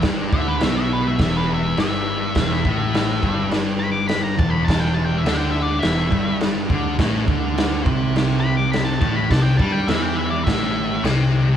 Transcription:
<<
  \new Staff \with { instrumentName = "Lead electric guitar" } { \time 4/4 \key e \minor \tempo 4 = 104 r8 e''16 b'16 e''16 e''16 b'16 e''16 e''16 b'16 e''8 e''4~ | e''2 r8 b''16 d'''16 b''16 ais''16 a''16 b''16 | a''16 g''16 a''16 g''16 e''16 g''16 e''16 d''16 e''4 r4 | r2 r8 b''16 d'''16 b''16 a''16 a''16 b''16 |
a''16 g''16 a''16 g''16 e''16 g''16 e''16 d''16 e''4 r4 | }
  \new Staff \with { instrumentName = "Distorted electric guitar" } { \clef bass \time 4/4 \key e \minor g,8 d8 b,4 e,4 g,4 | e,8 a,4 g,2 e,8~ | e,4 d4 e,8 g,4 d8 | a,8 d4 c2 a,8 |
c8 g8 e4 a,4 c4 | }
  \new Staff \with { instrumentName = "Picked electric bass" } { \clef bass \time 4/4 \key e \minor g,,8 d,8 b,,4 e,,4 g,,4 | e,,8 a,,4 g,,2 e,,8~ | e,,4 d,4 e,,8 g,,4 d,8 | a,,8 d,4 c,2 a,,8 |
c,8 g,8 e,4 a,,4 c,4 | }
  \new DrumStaff \with { instrumentName = "Drums" } \drummode { \time 4/4 <cymc bd sn>8 bd8 <cymc sn>4 <cymc bd sn>4 <cymc sn>4 | <cymc bd sn>8 bd8 <cymc sn>8 bd8 <cymc sn>4 <cymc sn>8 bd8 | <cymc bd sn>4 <cymc sn>4 <cymc sn>8 bd8 <cymc sn>8 bd8 | <cymc bd sn>8 bd8 <cymc sn>8 bd8 <cymc sn>4 <cymc sn>8 bd8 |
<cymc bd sn>8 bd8 <cymc sn>4 <cymc bd sn>4 <cymc sn>4 | }
>>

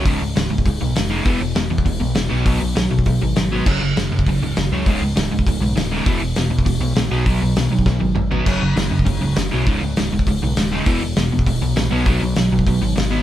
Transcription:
<<
  \new Staff \with { instrumentName = "Overdriven electric guitar" } { \clef bass \time 4/4 \key ces \lydian \tempo 4 = 200 <des, aes, des>8 <des, aes,>8 <des, aes,>8 <des, aes,>8 <des, aes,>8 <des, aes,>8 <des, aes,>8 <des, aes, des>8 | <e, b, e>8 <e, b,>8 <e, b,>8 <e, b,>8 <e, b,>8 <e, b,>8 <e, b,>8 <ces ges ces'>8 | <ces ges ces'>8 <ces ges>8 <ces ges>8 <ces ges>8 <ces ges>8 <ces ges>8 <ces ges>8 <ces ges ces'>8 | <ges, des ges>8 <ges, des>8 <ges, des>8 <ges, des>8 <ges, des>8 <ges, des>8 <ges, des>8 <ges, des ges>8 |
<des, aes, des>8 <des, aes,>8 <des, aes,>8 <des, aes,>8 <des, aes,>8 <des, aes,>8 <des, aes,>8 <des, aes, des>8 | <e, b, e>8 <e, b,>8 <e, b,>8 <e, b,>8 <e, b,>8 <e, b,>8 <e, b,>8 <ces ges ces'>8 | <ces ges ces'>8 <ces ges>8 <ces ges>8 <ces ges>8 <ces ges>8 <ces ges>8 <ces ges>8 <ces ges ces'>8 | <ges, des ges>8 <ges, des>8 <ges, des>8 <ges, des>8 <ges, des>8 <ges, des>8 <ges, des>8 <ges, des ges>8 |
<des, aes, des>8 <des, aes,>8 <des, aes,>8 <des, aes,>8 <des, aes,>8 <des, aes,>8 <des, aes,>8 <des, aes, des>8 | <e, b, e>8 <e, b,>8 <e, b,>8 <e, b,>8 <e, b,>8 <e, b,>8 <e, b,>8 <ces ges ces'>8 | <ces ges ces'>8 <ces ges>8 <ces ges>8 <ces ges>8 <ces ges>8 <ces ges>8 <ces ges>8 <ces ges ces'>8 | }
  \new Staff \with { instrumentName = "Picked electric bass" } { \clef bass \time 4/4 \key ces \lydian des,,8 des,8 des,,8 des,,8 des,,8 ces,8 f,,4 | e,,8 e,,8 e,,8 e,8 e,,8 b,,8 e,,8 ces,8 | ces,8 ces,8 ces,8 ces,8 ces,8 aes,,8 aes,,4 | ges,,8 ges,,8 ges,,8 ges,8 ges,,8 des,,8 ges,,8 des,8 |
des,,8 des,8 des,,8 des,,8 des,,8 ces,8 ees,,4 | e,,8 e,,8 e,,8 e,8 e,,8 b,,8 bes,,8 ces,8 | ces,8 ces,8 ces,8 ces,8 ces,8 aes,,8 aes,,4 | ges,,8 ges,,8 ges,,8 ges,8 ges,,8 des,,8 ges,,8 ces,8 |
des,,8 des,8 des,,8 des,,8 des,,8 ces,8 ees,,4 | e,,8 e,,8 e,,8 e,8 e,,8 b,,8 bes,,8 ces,8 | ces,8 ces,8 ces,8 ces,8 ces,8 aes,,8 aes,,4 | }
  \new DrumStaff \with { instrumentName = "Drums" } \drummode { \time 4/4 <hho bd>4 <hho sn>8. bd16 <hho bd>4 <hho sn>4 | <hho bd>4 <hho sn>8. bd16 <hho bd>4 <hho sn>4 | <hho bd>4 <hho sn>8. bd16 <hho bd>4 <hho sn>4 | <cymc bd>4 <hho sn>8. bd16 <hho bd>4 <hho sn>4 |
<hho bd>4 <hho sn>8. bd16 <hho bd>4 <hho sn>4 | <hho bd>4 <hho sn>8. bd16 <hho bd>4 <hho sn>4 | <hho bd>4 <hho sn>8. bd16 <bd sn>8 tommh8 toml8 tomfh8 | <cymc bd>4 <hho sn>8. bd16 <hho bd>4 <hho sn>4 |
<hho bd>4 <hho sn>8. bd16 <hho bd>4 <hho sn>4 | <hho bd>4 <hho sn>8. bd16 <hho bd>4 <hho sn>4 | <hho bd>4 <hho sn>8. bd16 <hho bd>4 <hho sn>4 | }
>>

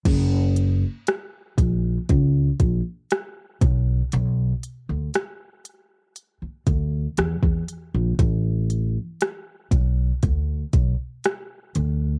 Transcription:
<<
  \new Staff \with { instrumentName = "Upright bass" } { \clef bass \time 4/4 \key fis \phrygian \tempo 4 = 59 fis,,4 r8 ais,,8 cis,8 ais,,16 r8. b,,8 | b,,8 r16 d,16 r4. d,8 e,16 e,16 r16 ais,,16 | a,,4 r8 b,,8 d,8 b,,16 r8. d,8 | }
  \new DrumStaff \with { instrumentName = "Drums" } \drummode { \time 4/4 <cymc hh bd>8 hh8 <hh ss>8 <hh bd>8 <hh bd>8 <hh bd>8 <hh ss>8 <hh bd>8 | hh8 hh8 <hh ss>8 hh8 hh8 <hh bd>8 <hh ss>16 bd16 hh8 | <hh bd>8 hh8 <hh ss>8 <hh bd>8 <hh bd>8 <hh bd>8 <hh ss>8 hh8 | }
>>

